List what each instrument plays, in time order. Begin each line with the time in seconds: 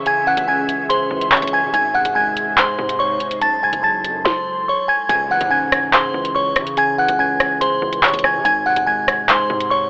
Already playing: tine electric piano C#3 E3 C#4, 808-style bass C#3, ambient pad C#4 G#4 E5
0.06 tine electric piano C#3, synth bell G#5 G#6, closed hi-hat
0.27 tine electric piano E3, synth bell F#5 F#6
0.37 808-style bass C#2, closed hi-hat
0.48 tine electric piano C#4, synth bell G#5 G#6
0.69 closed hi-hat
0.89 tine electric piano C#3, synth bell C5 C6, closed hi-hat
1.11 808-style bass C#2, tine electric piano E3
1.21 closed hi-hat
1.31 808-style bass C#3, synth bell C#5 C#6, clap, closed hi-hat
1.37 closed hi-hat
1.42 808-style bass C#2, closed hi-hat
1.47 closed hi-hat
1.53 synth bell G#5 G#6
1.63 808-style bass C#3
1.73 808-style bass G#1, tine electric piano G#2, ambient pad G#3 D#4 C5, synth bell G#5 G#6, closed hi-hat
1.95 tine electric piano C3, synth bell F#5 F#6
2.05 808-style bass G#1, closed hi-hat
2.15 tine electric piano G#3, synth bell G#5 G#6
2.37 closed hi-hat
2.47 808-style bass A1
2.58 tine electric piano G#2, synth bell C5 C6, clap, closed hi-hat
2.79 808-style bass G#2, tine electric piano C3
2.89 closed hi-hat
2.99 synth bell C#5 C#6
3.20 closed hi-hat
3.31 closed hi-hat
3.41 tine electric piano F#2, synth bell A5 A6, closed hi-hat
3.63 tine electric piano C#3, synth bell G#5 G#6
3.73 808-style bass F#1, closed hi-hat
3.83 tine electric piano F#3, synth bell A5 A6
4.04 808-style bass F#2, closed hi-hat
4.25 synth bell C5 C6, kick, snare
4.68 synth bell C#5 C#6
4.88 synth bell G#5 G#6
5.09 808-style bass C#2, tine electric piano C#3, synth bell G#5 G#6, closed hi-hat, impact
5.30 tine electric piano E3, synth bell F#5 F#6
5.41 808-style bass G#2, closed hi-hat
5.51 tine electric piano C#4, synth bell G#5 G#6
5.72 cross-stick, closed hi-hat
5.93 tine electric piano C#3, synth bell C5 C6, clap, closed hi-hat
6.14 808-style bass C#2, tine electric piano E3
6.25 closed hi-hat
6.35 synth bell C#5 C#6
6.56 808-style bass C#3, cross-stick, closed hi-hat
6.67 closed hi-hat
6.77 tine electric piano C#3, synth bell G#5 G#6, closed hi-hat
6.98 tine electric piano E3, synth bell F#5 F#6
7.08 808-style bass C#2, closed hi-hat
7.19 tine electric piano C#4, synth bell G#5 G#6
7.40 cross-stick, closed hi-hat
7.61 tine electric piano C#3, synth bell C5 C6, closed hi-hat
7.82 808-style bass C#2, tine electric piano E3
7.93 closed hi-hat
8.03 808-style bass C#3, synth bell C#5 C#6, clap, closed hi-hat
8.08 closed hi-hat
8.14 808-style bass C#2, closed hi-hat
8.19 closed hi-hat
8.24 synth bell G#5 G#6, cross-stick
8.35 808-style bass C#3
8.45 808-style bass G#1, tine electric piano G#2, synth bell G#5 G#6, closed hi-hat
8.66 tine electric piano C3, synth bell F#5 F#6
8.76 808-style bass G#1, closed hi-hat
8.87 tine electric piano G#3, synth bell G#5 G#6
9.08 cross-stick, closed hi-hat
9.18 808-style bass A1
9.29 tine electric piano G#2, synth bell C5 C6, clap, closed hi-hat
9.50 808-style bass G#2, tine electric piano C3
9.61 closed hi-hat
9.70 synth bell C#5 C#6